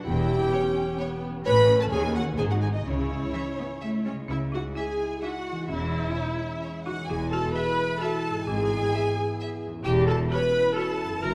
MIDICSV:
0, 0, Header, 1, 9, 480
1, 0, Start_track
1, 0, Key_signature, 4, "minor"
1, 0, Tempo, 463320
1, 74, Time_signature, 3, 2, 24, 8
1, 2473, Tempo, 472813
1, 6313, Tempo, 461184
1, 11694, End_track
2, 0, Start_track
2, 0, Title_t, "Violin section"
2, 0, Program_c, 0, 48
2, 66, Note_on_c, 0, 79, 94
2, 1248, Note_off_c, 0, 79, 0
2, 1514, Note_on_c, 0, 83, 108
2, 1847, Note_off_c, 0, 83, 0
2, 1872, Note_on_c, 0, 81, 74
2, 1919, Note_off_c, 0, 81, 0
2, 1982, Note_on_c, 0, 80, 93
2, 2222, Note_off_c, 0, 80, 0
2, 2238, Note_on_c, 0, 78, 89
2, 2321, Note_off_c, 0, 78, 0
2, 2459, Note_on_c, 0, 80, 81
2, 2510, Note_off_c, 0, 80, 0
2, 2589, Note_on_c, 0, 78, 66
2, 2638, Note_off_c, 0, 78, 0
2, 2707, Note_on_c, 0, 80, 78
2, 2756, Note_off_c, 0, 80, 0
2, 2833, Note_on_c, 0, 75, 66
2, 2951, Note_off_c, 0, 75, 0
2, 2964, Note_on_c, 0, 73, 72
2, 4154, Note_off_c, 0, 73, 0
2, 4166, Note_on_c, 0, 73, 61
2, 4247, Note_off_c, 0, 73, 0
2, 4424, Note_on_c, 0, 76, 68
2, 4505, Note_off_c, 0, 76, 0
2, 4659, Note_on_c, 0, 78, 63
2, 4740, Note_off_c, 0, 78, 0
2, 4886, Note_on_c, 0, 80, 74
2, 5355, Note_off_c, 0, 80, 0
2, 5361, Note_on_c, 0, 78, 76
2, 5825, Note_on_c, 0, 76, 73
2, 5827, Note_off_c, 0, 78, 0
2, 7004, Note_off_c, 0, 76, 0
2, 7018, Note_on_c, 0, 78, 78
2, 7250, Note_on_c, 0, 80, 79
2, 7262, Note_off_c, 0, 78, 0
2, 7501, Note_off_c, 0, 80, 0
2, 7511, Note_on_c, 0, 81, 75
2, 7743, Note_on_c, 0, 83, 85
2, 7747, Note_off_c, 0, 81, 0
2, 8222, Note_off_c, 0, 83, 0
2, 8225, Note_on_c, 0, 81, 91
2, 8690, Note_on_c, 0, 80, 95
2, 8711, Note_off_c, 0, 81, 0
2, 9898, Note_off_c, 0, 80, 0
2, 10143, Note_on_c, 0, 79, 91
2, 10226, Note_off_c, 0, 79, 0
2, 10401, Note_on_c, 0, 81, 79
2, 10484, Note_off_c, 0, 81, 0
2, 10638, Note_on_c, 0, 83, 93
2, 11106, Note_off_c, 0, 83, 0
2, 11116, Note_on_c, 0, 81, 87
2, 11584, Note_off_c, 0, 81, 0
2, 11591, Note_on_c, 0, 82, 92
2, 11694, Note_off_c, 0, 82, 0
2, 11694, End_track
3, 0, Start_track
3, 0, Title_t, "Violin section"
3, 0, Program_c, 1, 48
3, 553, Note_on_c, 1, 73, 72
3, 636, Note_off_c, 1, 73, 0
3, 1038, Note_on_c, 1, 73, 75
3, 1121, Note_off_c, 1, 73, 0
3, 1510, Note_on_c, 1, 73, 76
3, 1593, Note_off_c, 1, 73, 0
3, 1997, Note_on_c, 1, 73, 62
3, 2079, Note_off_c, 1, 73, 0
3, 2457, Note_on_c, 1, 72, 63
3, 2538, Note_off_c, 1, 72, 0
3, 3432, Note_on_c, 1, 76, 51
3, 3513, Note_off_c, 1, 76, 0
3, 3918, Note_on_c, 1, 76, 54
3, 4000, Note_off_c, 1, 76, 0
3, 4888, Note_on_c, 1, 76, 54
3, 4969, Note_off_c, 1, 76, 0
3, 5360, Note_on_c, 1, 76, 50
3, 5441, Note_off_c, 1, 76, 0
3, 6297, Note_on_c, 1, 73, 55
3, 6380, Note_off_c, 1, 73, 0
3, 6784, Note_on_c, 1, 73, 57
3, 6867, Note_off_c, 1, 73, 0
3, 7758, Note_on_c, 1, 76, 59
3, 7841, Note_off_c, 1, 76, 0
3, 8233, Note_on_c, 1, 76, 65
3, 8316, Note_off_c, 1, 76, 0
3, 9200, Note_on_c, 1, 76, 62
3, 9284, Note_off_c, 1, 76, 0
3, 9681, Note_on_c, 1, 76, 67
3, 9764, Note_off_c, 1, 76, 0
3, 10640, Note_on_c, 1, 73, 66
3, 10723, Note_off_c, 1, 73, 0
3, 11116, Note_on_c, 1, 73, 62
3, 11199, Note_off_c, 1, 73, 0
3, 11694, End_track
4, 0, Start_track
4, 0, Title_t, "Viola section"
4, 0, Program_c, 2, 48
4, 67, Note_on_c, 2, 64, 90
4, 545, Note_off_c, 2, 64, 0
4, 551, Note_on_c, 2, 61, 95
4, 1020, Note_on_c, 2, 59, 83
4, 1034, Note_off_c, 2, 61, 0
4, 1502, Note_on_c, 2, 61, 96
4, 1505, Note_off_c, 2, 59, 0
4, 2447, Note_off_c, 2, 61, 0
4, 2474, Note_on_c, 2, 63, 73
4, 2943, Note_off_c, 2, 63, 0
4, 2949, Note_on_c, 2, 64, 79
4, 4141, Note_off_c, 2, 64, 0
4, 4176, Note_on_c, 2, 61, 61
4, 4257, Note_off_c, 2, 61, 0
4, 4404, Note_on_c, 2, 64, 85
4, 4486, Note_off_c, 2, 64, 0
4, 4657, Note_on_c, 2, 66, 84
4, 4738, Note_off_c, 2, 66, 0
4, 4901, Note_on_c, 2, 68, 87
4, 5362, Note_off_c, 2, 68, 0
4, 5364, Note_on_c, 2, 66, 88
4, 5829, Note_off_c, 2, 66, 0
4, 5839, Note_on_c, 2, 64, 102
4, 7011, Note_off_c, 2, 64, 0
4, 7042, Note_on_c, 2, 66, 82
4, 7125, Note_off_c, 2, 66, 0
4, 7277, Note_on_c, 2, 68, 86
4, 7360, Note_off_c, 2, 68, 0
4, 7506, Note_on_c, 2, 69, 102
4, 7745, Note_off_c, 2, 69, 0
4, 7749, Note_on_c, 2, 71, 106
4, 8222, Note_on_c, 2, 69, 95
4, 8226, Note_off_c, 2, 71, 0
4, 8700, Note_off_c, 2, 69, 0
4, 8713, Note_on_c, 2, 68, 118
4, 9886, Note_off_c, 2, 68, 0
4, 10146, Note_on_c, 2, 67, 113
4, 10371, Note_off_c, 2, 67, 0
4, 10378, Note_on_c, 2, 69, 113
4, 10461, Note_off_c, 2, 69, 0
4, 10621, Note_on_c, 2, 71, 116
4, 11097, Note_off_c, 2, 71, 0
4, 11097, Note_on_c, 2, 69, 101
4, 11575, Note_on_c, 2, 70, 109
4, 11584, Note_off_c, 2, 69, 0
4, 11658, Note_off_c, 2, 70, 0
4, 11694, End_track
5, 0, Start_track
5, 0, Title_t, "French horn section"
5, 0, Program_c, 3, 60
5, 81, Note_on_c, 3, 67, 106
5, 1256, Note_off_c, 3, 67, 0
5, 1516, Note_on_c, 3, 71, 126
5, 1848, Note_off_c, 3, 71, 0
5, 1870, Note_on_c, 3, 69, 77
5, 1990, Note_off_c, 3, 69, 0
5, 1993, Note_on_c, 3, 68, 115
5, 2101, Note_off_c, 3, 68, 0
5, 2239, Note_on_c, 3, 66, 89
5, 2346, Note_off_c, 3, 66, 0
5, 2467, Note_on_c, 3, 68, 110
5, 2587, Note_off_c, 3, 68, 0
5, 2599, Note_on_c, 3, 66, 95
5, 2713, Note_off_c, 3, 66, 0
5, 2714, Note_on_c, 3, 68, 85
5, 2767, Note_off_c, 3, 68, 0
5, 2840, Note_on_c, 3, 63, 68
5, 2893, Note_off_c, 3, 63, 0
5, 2953, Note_on_c, 3, 61, 82
5, 4143, Note_off_c, 3, 61, 0
5, 4413, Note_on_c, 3, 56, 58
5, 4413, Note_on_c, 3, 64, 55
5, 5801, Note_off_c, 3, 64, 0
5, 5838, Note_on_c, 3, 61, 60
5, 7236, Note_off_c, 3, 56, 0
5, 7274, Note_off_c, 3, 61, 0
5, 7277, Note_on_c, 3, 56, 66
5, 7278, Note_on_c, 3, 64, 69
5, 8689, Note_off_c, 3, 56, 0
5, 8718, Note_on_c, 3, 59, 70
5, 10122, Note_off_c, 3, 59, 0
5, 10142, Note_off_c, 3, 64, 0
5, 10148, Note_on_c, 3, 61, 73
5, 10155, Note_on_c, 3, 64, 74
5, 11549, Note_off_c, 3, 61, 0
5, 11605, Note_on_c, 3, 58, 70
5, 11694, Note_off_c, 3, 58, 0
5, 11694, Note_off_c, 3, 64, 0
5, 11694, End_track
6, 0, Start_track
6, 0, Title_t, "Harp"
6, 0, Program_c, 4, 46
6, 73, Note_on_c, 4, 52, 78
6, 241, Note_on_c, 4, 61, 58
6, 396, Note_on_c, 4, 64, 63
6, 559, Note_on_c, 4, 67, 69
6, 719, Note_on_c, 4, 73, 66
6, 865, Note_off_c, 4, 67, 0
6, 1023, Note_off_c, 4, 73, 0
6, 1036, Note_on_c, 4, 73, 72
6, 1194, Note_on_c, 4, 67, 70
6, 1343, Note_off_c, 4, 61, 0
6, 1356, Note_on_c, 4, 61, 68
6, 1513, Note_on_c, 4, 45, 84
6, 1532, Note_off_c, 4, 67, 0
6, 1533, Note_off_c, 4, 52, 0
6, 1662, Note_off_c, 4, 61, 0
6, 1674, Note_on_c, 4, 61, 62
6, 1824, Note_off_c, 4, 64, 0
6, 1836, Note_on_c, 4, 64, 57
6, 1841, Note_on_c, 4, 69, 65
6, 1998, Note_on_c, 4, 51, 78
6, 2010, Note_off_c, 4, 45, 0
6, 2012, Note_off_c, 4, 64, 0
6, 2143, Note_off_c, 4, 61, 0
6, 2155, Note_on_c, 4, 61, 55
6, 2304, Note_off_c, 4, 69, 0
6, 2309, Note_on_c, 4, 66, 56
6, 2320, Note_on_c, 4, 69, 62
6, 2473, Note_on_c, 4, 44, 72
6, 2491, Note_off_c, 4, 73, 0
6, 2494, Note_off_c, 4, 61, 0
6, 2494, Note_off_c, 4, 69, 0
6, 2495, Note_off_c, 4, 51, 0
6, 2631, Note_on_c, 4, 60, 53
6, 2779, Note_off_c, 4, 66, 0
6, 2791, Note_on_c, 4, 66, 49
6, 2795, Note_on_c, 4, 68, 55
6, 2950, Note_on_c, 4, 49, 60
6, 2971, Note_off_c, 4, 60, 0
6, 2971, Note_off_c, 4, 66, 0
6, 2972, Note_off_c, 4, 44, 0
6, 3108, Note_on_c, 4, 56, 49
6, 3271, Note_on_c, 4, 61, 43
6, 3437, Note_on_c, 4, 64, 46
6, 3579, Note_off_c, 4, 68, 0
6, 3591, Note_on_c, 4, 68, 50
6, 3748, Note_off_c, 4, 64, 0
6, 3760, Note_on_c, 4, 64, 50
6, 3909, Note_off_c, 4, 68, 0
6, 3922, Note_on_c, 4, 68, 54
6, 4078, Note_off_c, 4, 64, 0
6, 4090, Note_on_c, 4, 64, 47
6, 4226, Note_off_c, 4, 49, 0
6, 4239, Note_off_c, 4, 56, 0
6, 4239, Note_on_c, 4, 49, 55
6, 4252, Note_on_c, 4, 56, 48
6, 4269, Note_off_c, 4, 61, 0
6, 4281, Note_on_c, 4, 61, 41
6, 4315, Note_off_c, 4, 64, 0
6, 4327, Note_on_c, 4, 64, 43
6, 4362, Note_off_c, 4, 68, 0
6, 4375, Note_on_c, 4, 68, 44
6, 5652, Note_on_c, 4, 52, 55
6, 5685, Note_off_c, 4, 61, 0
6, 5697, Note_on_c, 4, 61, 45
6, 5730, Note_off_c, 4, 64, 0
6, 5742, Note_on_c, 4, 64, 47
6, 5773, Note_off_c, 4, 49, 0
6, 5775, Note_off_c, 4, 68, 0
6, 5787, Note_on_c, 4, 68, 46
6, 7067, Note_off_c, 4, 52, 0
6, 7079, Note_on_c, 4, 52, 62
6, 7127, Note_on_c, 4, 59, 50
6, 7161, Note_off_c, 4, 64, 0
6, 7174, Note_on_c, 4, 64, 48
6, 7210, Note_off_c, 4, 68, 0
6, 7221, Note_off_c, 4, 61, 0
6, 7223, Note_on_c, 4, 68, 50
6, 8259, Note_off_c, 4, 56, 0
6, 8526, Note_on_c, 4, 44, 62
6, 8561, Note_off_c, 4, 59, 0
6, 8573, Note_on_c, 4, 59, 53
6, 8606, Note_off_c, 4, 64, 0
6, 8618, Note_on_c, 4, 64, 52
6, 8638, Note_off_c, 4, 52, 0
6, 8653, Note_off_c, 4, 68, 0
6, 9953, Note_on_c, 4, 40, 63
6, 10000, Note_on_c, 4, 61, 55
6, 10035, Note_off_c, 4, 64, 0
6, 10047, Note_on_c, 4, 64, 54
6, 10074, Note_off_c, 4, 44, 0
6, 10095, Note_on_c, 4, 73, 56
6, 10098, Note_off_c, 4, 59, 0
6, 11393, Note_on_c, 4, 42, 61
6, 11429, Note_off_c, 4, 61, 0
6, 11441, Note_on_c, 4, 61, 50
6, 11476, Note_off_c, 4, 64, 0
6, 11489, Note_on_c, 4, 64, 55
6, 11512, Note_off_c, 4, 40, 0
6, 11536, Note_on_c, 4, 70, 52
6, 11694, Note_off_c, 4, 42, 0
6, 11694, Note_off_c, 4, 61, 0
6, 11694, Note_off_c, 4, 64, 0
6, 11694, Note_off_c, 4, 70, 0
6, 11694, Note_off_c, 4, 73, 0
6, 11694, End_track
7, 0, Start_track
7, 0, Title_t, "Marimba"
7, 0, Program_c, 5, 12
7, 4172, Note_on_c, 5, 57, 57
7, 4395, Note_off_c, 5, 57, 0
7, 4398, Note_on_c, 5, 61, 70
7, 4627, Note_off_c, 5, 61, 0
7, 4638, Note_on_c, 5, 63, 65
7, 4867, Note_off_c, 5, 63, 0
7, 4876, Note_on_c, 5, 64, 65
7, 5326, Note_off_c, 5, 64, 0
7, 5357, Note_on_c, 5, 63, 72
7, 5801, Note_off_c, 5, 63, 0
7, 5821, Note_on_c, 5, 61, 68
7, 6984, Note_off_c, 5, 61, 0
7, 7031, Note_on_c, 5, 63, 68
7, 7256, Note_off_c, 5, 63, 0
7, 7279, Note_on_c, 5, 64, 76
7, 7499, Note_off_c, 5, 64, 0
7, 7523, Note_on_c, 5, 66, 83
7, 7742, Note_off_c, 5, 66, 0
7, 7757, Note_on_c, 5, 68, 83
7, 8205, Note_off_c, 5, 68, 0
7, 8233, Note_on_c, 5, 66, 87
7, 8681, Note_off_c, 5, 66, 0
7, 8710, Note_on_c, 5, 64, 78
7, 9867, Note_off_c, 5, 64, 0
7, 10151, Note_on_c, 5, 64, 87
7, 10374, Note_off_c, 5, 64, 0
7, 10383, Note_on_c, 5, 66, 79
7, 10610, Note_off_c, 5, 66, 0
7, 10632, Note_on_c, 5, 67, 86
7, 11078, Note_off_c, 5, 67, 0
7, 11094, Note_on_c, 5, 66, 89
7, 11549, Note_off_c, 5, 66, 0
7, 11576, Note_on_c, 5, 66, 81
7, 11694, Note_off_c, 5, 66, 0
7, 11694, End_track
8, 0, Start_track
8, 0, Title_t, "Cello section"
8, 0, Program_c, 6, 48
8, 70, Note_on_c, 6, 40, 86
8, 475, Note_off_c, 6, 40, 0
8, 1506, Note_on_c, 6, 45, 90
8, 1907, Note_off_c, 6, 45, 0
8, 1989, Note_on_c, 6, 39, 89
8, 2391, Note_off_c, 6, 39, 0
8, 2477, Note_on_c, 6, 44, 81
8, 2874, Note_off_c, 6, 44, 0
8, 2955, Note_on_c, 6, 49, 71
8, 3356, Note_off_c, 6, 49, 0
8, 3442, Note_on_c, 6, 52, 65
8, 3523, Note_off_c, 6, 52, 0
8, 3688, Note_on_c, 6, 59, 67
8, 3769, Note_off_c, 6, 59, 0
8, 3927, Note_on_c, 6, 57, 67
8, 4164, Note_off_c, 6, 57, 0
8, 4164, Note_on_c, 6, 56, 56
8, 4404, Note_on_c, 6, 49, 64
8, 4408, Note_off_c, 6, 56, 0
8, 4807, Note_off_c, 6, 49, 0
8, 5837, Note_on_c, 6, 40, 69
8, 6232, Note_off_c, 6, 40, 0
8, 7270, Note_on_c, 6, 40, 78
8, 7671, Note_off_c, 6, 40, 0
8, 8718, Note_on_c, 6, 44, 83
8, 9116, Note_off_c, 6, 44, 0
8, 10150, Note_on_c, 6, 40, 85
8, 10550, Note_off_c, 6, 40, 0
8, 11584, Note_on_c, 6, 42, 79
8, 11694, Note_off_c, 6, 42, 0
8, 11694, End_track
9, 0, Start_track
9, 0, Title_t, "Double bass section"
9, 0, Program_c, 7, 48
9, 75, Note_on_c, 7, 28, 87
9, 477, Note_off_c, 7, 28, 0
9, 1503, Note_on_c, 7, 33, 92
9, 1905, Note_off_c, 7, 33, 0
9, 1982, Note_on_c, 7, 39, 91
9, 2387, Note_off_c, 7, 39, 0
9, 2472, Note_on_c, 7, 32, 85
9, 2871, Note_off_c, 7, 32, 0
9, 2942, Note_on_c, 7, 37, 70
9, 3350, Note_off_c, 7, 37, 0
9, 4415, Note_on_c, 7, 37, 71
9, 4813, Note_off_c, 7, 37, 0
9, 5829, Note_on_c, 7, 28, 71
9, 6228, Note_off_c, 7, 28, 0
9, 7269, Note_on_c, 7, 28, 76
9, 7670, Note_off_c, 7, 28, 0
9, 8708, Note_on_c, 7, 32, 86
9, 9111, Note_off_c, 7, 32, 0
9, 10137, Note_on_c, 7, 28, 88
9, 10543, Note_off_c, 7, 28, 0
9, 11581, Note_on_c, 7, 30, 74
9, 11694, Note_off_c, 7, 30, 0
9, 11694, End_track
0, 0, End_of_file